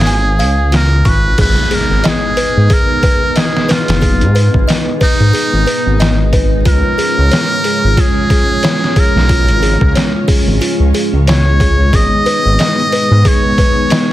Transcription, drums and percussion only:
0.01 snare
0.07 open hi-hat
0.40 open hi-hat
0.72 snare, open hi-hat
1.05 kick, open hi-hat
1.38 kick, open hi-hat, crash
1.71 open hi-hat
2.04 snare, open hi-hat
2.37 open hi-hat
2.70 kick, open hi-hat
3.03 kick, open hi-hat
3.36 snare, open hi-hat
3.57 snare
3.69 snare, open hi-hat
3.88 snare, open hi-hat
4.02 kick, open hi-hat
4.21 closed hi-hat
4.36 open hi-hat
4.54 kick
4.69 snare, open hi-hat
5.01 kick, open hi-hat
5.35 open hi-hat
5.67 open hi-hat
6.00 snare, open hi-hat
6.33 kick, open hi-hat
6.65 kick, open hi-hat
6.99 open hi-hat
7.32 snare, open hi-hat
7.64 open hi-hat
7.97 kick, open hi-hat
8.30 kick, open hi-hat
8.63 snare, open hi-hat
8.84 snare
8.96 kick, open hi-hat
9.17 snare
9.29 kick, open hi-hat
9.48 closed hi-hat
9.63 open hi-hat
9.81 kick
9.95 snare, open hi-hat
10.28 kick, open hi-hat
10.62 open hi-hat
10.95 open hi-hat
11.27 snare, open hi-hat
11.60 kick, open hi-hat
11.93 kick, open hi-hat
12.26 open hi-hat
12.59 snare, open hi-hat
12.92 open hi-hat
13.25 kick, open hi-hat
13.58 kick, open hi-hat
13.90 snare, open hi-hat

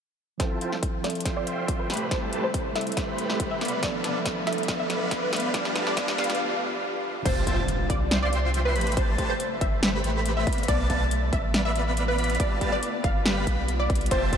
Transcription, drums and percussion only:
0.40 kick, snare, closed hi-hat
0.61 closed hi-hat
0.73 snare
0.83 kick, closed hi-hat
1.04 snare, closed hi-hat
1.10 closed hi-hat
1.15 closed hi-hat
1.20 closed hi-hat
1.25 kick, snare, closed hi-hat
1.47 closed hi-hat
1.68 kick, closed hi-hat
1.90 snare, closed hi-hat
1.94 closed hi-hat
1.97 closed hi-hat
2.11 kick, snare, closed hi-hat
2.33 closed hi-hat
2.54 kick, closed hi-hat
2.76 snare, closed hi-hat
2.81 closed hi-hat
2.87 closed hi-hat
2.92 closed hi-hat
2.97 kick, snare, closed hi-hat
3.18 closed hi-hat
3.30 snare
3.40 kick, closed hi-hat
3.61 snare, closed hi-hat
3.65 closed hi-hat
3.68 closed hi-hat
3.83 kick, snare, closed hi-hat
4.04 snare, closed hi-hat
4.25 kick, snare, closed hi-hat
4.47 snare, closed hi-hat
4.53 closed hi-hat
4.58 closed hi-hat
4.63 closed hi-hat
4.68 kick, snare, closed hi-hat
4.90 snare, closed hi-hat
5.11 kick, snare, closed hi-hat
5.33 snare, closed hi-hat
5.36 closed hi-hat
5.40 closed hi-hat
5.54 kick, snare, closed hi-hat
5.65 snare
5.76 snare, closed hi-hat
5.87 snare
5.97 kick, snare, closed hi-hat
6.08 snare
6.18 snare, closed hi-hat
6.24 closed hi-hat
6.30 snare, closed hi-hat
6.35 closed hi-hat
7.26 kick, closed hi-hat, crash
7.47 kick, closed hi-hat
7.68 closed hi-hat
7.90 kick, closed hi-hat
8.11 snare, closed hi-hat
8.33 closed hi-hat
8.54 closed hi-hat
8.76 closed hi-hat
8.81 closed hi-hat
8.87 closed hi-hat
8.92 closed hi-hat
8.97 kick, closed hi-hat
9.18 kick, closed hi-hat
9.40 closed hi-hat
9.61 kick, closed hi-hat
9.83 snare, closed hi-hat
10.04 closed hi-hat
10.26 closed hi-hat
10.47 kick, closed hi-hat
10.53 closed hi-hat
10.58 closed hi-hat
10.63 closed hi-hat
10.68 kick, closed hi-hat
10.90 kick, closed hi-hat
11.11 closed hi-hat
11.33 kick, closed hi-hat
11.54 snare, closed hi-hat
11.76 closed hi-hat
11.97 closed hi-hat
12.18 closed hi-hat
12.24 closed hi-hat
12.30 closed hi-hat
12.35 closed hi-hat
12.40 kick, closed hi-hat
12.61 kick, closed hi-hat
12.83 closed hi-hat
13.04 kick, closed hi-hat
13.26 snare, closed hi-hat
13.47 kick, closed hi-hat
13.68 closed hi-hat
13.90 kick, closed hi-hat
13.95 closed hi-hat
14.01 closed hi-hat
14.06 closed hi-hat
14.11 kick, closed hi-hat
14.33 kick, closed hi-hat

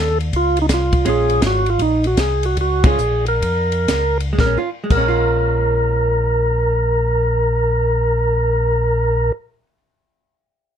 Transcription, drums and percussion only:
0.20 ride
0.33 kick, ride
0.57 ride
0.69 kick, snare, hi-hat pedal, ride
0.93 kick, ride
1.05 kick, ride
1.30 ride
1.42 kick, snare, hi-hat pedal, ride
1.66 ride
1.79 kick, ride
2.04 ride
2.17 kick, snare, hi-hat pedal, ride
2.43 ride
2.57 kick, ride
2.84 kick, ride
2.99 hi-hat pedal
3.26 ride
3.42 kick, ride
3.72 ride
3.88 kick, snare, hi-hat pedal, ride
4.20 ride
4.38 kick, snare
4.90 kick, crash

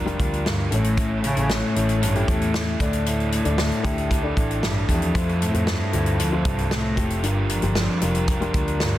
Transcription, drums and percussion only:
0.07 closed hi-hat
0.20 kick, closed hi-hat
0.33 closed hi-hat
0.46 snare
0.72 closed hi-hat
0.84 closed hi-hat
0.97 kick, closed hi-hat
1.24 closed hi-hat
1.37 closed hi-hat
1.50 snare
1.76 closed hi-hat
1.89 closed hi-hat
2.03 closed hi-hat
2.15 closed hi-hat
2.28 kick, closed hi-hat
2.41 closed hi-hat
2.54 snare
2.80 kick, closed hi-hat
2.93 closed hi-hat
3.06 closed hi-hat
3.20 closed hi-hat
3.32 closed hi-hat
3.45 closed hi-hat
3.58 snare
3.71 closed hi-hat
3.85 kick, closed hi-hat
3.98 closed hi-hat
4.11 kick, closed hi-hat
4.37 kick, closed hi-hat
4.51 closed hi-hat
4.63 snare
4.89 kick, closed hi-hat
5.02 closed hi-hat
5.15 kick, closed hi-hat
5.29 closed hi-hat
5.42 closed hi-hat
5.54 closed hi-hat
5.67 snare
5.93 closed hi-hat
6.06 closed hi-hat
6.20 closed hi-hat
6.45 kick, closed hi-hat
6.58 closed hi-hat
6.71 snare
6.97 kick, closed hi-hat
7.10 closed hi-hat
7.23 closed hi-hat
7.49 closed hi-hat
7.62 closed hi-hat
7.75 snare
8.01 closed hi-hat
8.15 closed hi-hat
8.28 kick, closed hi-hat
8.42 closed hi-hat
8.54 kick, closed hi-hat
8.68 closed hi-hat
8.80 snare

